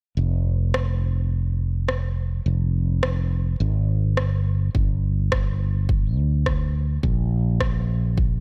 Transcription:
0.17 F1
0.74 cross-stick
1.88 cross-stick
2.46 F1
3.03 cross-stick
3.60 G#1
4.17 G1, cross-stick
4.75 G1, kick
5.32 kick, cross-stick
5.89 kick
6.17 D2
6.46 kick, cross-stick
7.03 A#1, kick
7.60 kick, cross-stick
8.18 kick

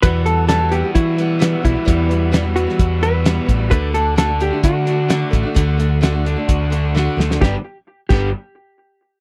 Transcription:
0.02 E2 B2 E3 G3 B3 F#4 B4 F#5 E6, kick, closed hi-hat
0.24 E3 G3 B3 F#4 A4, closed hi-hat
0.47 E2 B2 E3 G3 B3 F#4 A4, snare, closed hi-hat
0.59 E3 G3 B3 F#4
0.69 E3 G3 B3 F#4 G4, closed hi-hat
0.82 E3 G3 B3 F#4
0.95 E3 E4 F#4, kick, closed hi-hat
1.17 E3 G3 B3 F#4, closed hi-hat
1.39 E2 B2 E3 G3 B3 F#4, snare, closed hi-hat
1.62 B1 E3 G3 B3 E4 F#4, kick, closed hi-hat
1.73 E3 G3 B3 F#4
1.85 E2 B2 E3 G3 B3 F#4, kick, closed hi-hat
2.09 E3 G3 B3 F#4, closed hi-hat
2.31 E2 B2 E3 G3 B3 F#4, snare, closed hi-hat
2.43 E3 G3 B3 F#4
2.54 E3 G3 B3 F#4, closed hi-hat
2.67 E3 G3 B3 F#4, snare
2.79 E2 F#4, kick, closed hi-hat
3.01 E3 G3 B3 F#4 B4, closed hi-hat
3.24 E2 B2 E3 G3 B3 F#4, snare, closed hi-hat
3.46 A1 E3 G3 B3 F#4, kick, closed hi-hat
3.57 E3 G3 B3 F#4
3.70 D2 D3 A3 D4 F#4 A4 B4 D6, kick, closed hi-hat
3.93 D3 A3 D4 F#4 A4, closed hi-hat
4.16 D3 A3 D4 F#4 A4, snare, closed hi-hat
4.26 A3 D4 F#4
4.39 D3 A3 D4 F#4 G4, closed hi-hat
4.50 A3 D4 F#4
4.63 D3 F#4, kick, closed hi-hat
4.86 D3 A3 D4 F#4, closed hi-hat
5.09 D3 A3 D4 F#4, snare, closed hi-hat
5.31 A1 D3 A3 D4 F#4, kick, closed hi-hat
5.43 A3 D4 F#4
5.54 D2 D3 A3 D4 F#4 C6, kick, closed hi-hat
5.78 D3 A3 D4 F#4, closed hi-hat
6.01 D3 A3 D4 F#4, snare, closed hi-hat
6.12 A3 D4 F#4
6.25 D3 A3 D4 F#4, closed hi-hat
6.36 A3 D4 F#4
6.48 D2 F#4, kick, closed hi-hat
6.70 D3 A3 D4 F#4, closed hi-hat
6.95 D3 A3 D4 F#4, snare
7.17 D2 D3 A3 D4 F#4, snare
7.30 A3 D4 F#4, snare
7.41 G1 G2 D3 G3 B3 D4 G4 B4, kick, snare
8.09 G1 G2 D3 G3 B3 D4 G4, kick, crash

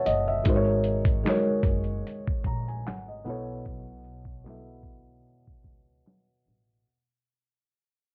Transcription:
Already playing: B2 B3 E4 A4 B4 C#5 E5 F#5 A5
0.06 F#1 D#5, closed hi-hat
0.28 E5
0.44 G#1 G#3 D#4 F#4 A#4, kick, closed hi-hat
0.49 C5
0.56 C#5
0.84 closed hi-hat
1.05 kick, closed hi-hat
1.24 G#3 D#4 F#4, snare, clap, closed hi-hat
1.28 A#4 C#5
1.63 F#1, kick, closed hi-hat
1.84 closed hi-hat
2.07 closed hi-hat
2.27 kick
2.44 A#1 A#5, kick, closed hi-hat
2.68 G#5, closed hi-hat
2.86 G#1 F#5, snare, clap, closed hi-hat
3.08 D#5
3.24 B1 B2 B3 E4 A4, closed hi-hat
3.29 C#5
3.65 B1, kick, closed hi-hat
4.04 closed hi-hat
4.25 kick, closed hi-hat
4.44 B2 B3 E4 A4, snare, clap, closed hi-hat
4.49 E5
4.83 kick, closed hi-hat
5.04 closed hi-hat
5.27 closed hi-hat
5.47 muted upright bass stroke, kick
5.64 C#2, kick, closed hi-hat
6.07 snare, clap
6.46 A1, snare

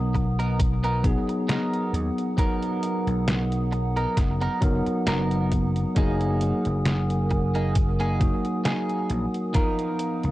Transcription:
Already playing: B1 F#3 B3 D#4 A#4 F#5 A#5 D#6
0.14 muted clean electric guitar stroke, kick, closed hi-hat
0.39 B3 D#4 A#4, closed hi-hat
0.59 kick, closed hi-hat
0.83 B3 D#4 A#4, closed hi-hat
1.03 F#3 B3 D#4 G#4, kick, closed hi-hat
1.29 muted clean electric guitar stroke, closed hi-hat
1.48 B3 D#4 A#4, snare, closed hi-hat
1.74 closed hi-hat
1.93 D#2, closed hi-hat
2.19 closed hi-hat
2.37 F#3 B3 D#4 A#4, kick, closed hi-hat
2.63 closed hi-hat
2.83 closed hi-hat
3.07 B1, closed hi-hat
3.28 snare, closed hi-hat
3.52 closed hi-hat
3.72 muted clean electric guitar stroke, closed hi-hat
3.97 B3 D#4 A#4, closed hi-hat
4.17 F#1, kick, snare, closed hi-hat
4.41 B3 D#4 A#4, closed hi-hat
4.61 F#1 F#3 B3 D#4 A#4, kick, closed hi-hat
4.87 muted clean electric guitar stroke, muted slap bass stroke, closed hi-hat
5.06 F#1 B3 D#4 A#4, snare, closed hi-hat
5.31 closed hi-hat
5.52 kick, closed hi-hat
5.76 closed hi-hat
5.95 F#1 F#3 A#3 D#4 G#4 A#4 G#5, kick, closed hi-hat
6.21 closed hi-hat
6.41 closed hi-hat
6.65 F#1, closed hi-hat
6.85 snare, closed hi-hat
7.10 closed hi-hat
7.30 muted clean electric guitar stroke, kick, closed hi-hat
7.55 A#3 D#4 G#4, closed hi-hat
7.75 kick, closed hi-hat
7.99 A#3 D#4 G#4, closed hi-hat
8.19 F#3 A#3 D#4 F#4, kick, closed hi-hat
8.44 muted clean electric guitar stroke, closed hi-hat
8.65 A#3 D#4 G#4, snare, closed hi-hat
8.89 closed hi-hat
9.09 A#1, closed hi-hat
9.34 closed hi-hat
9.53 F3 B3 D#4 F4 A#4 F5 A#5, kick, closed hi-hat
9.79 closed hi-hat
9.99 closed hi-hat
10.24 C#2, closed hi-hat

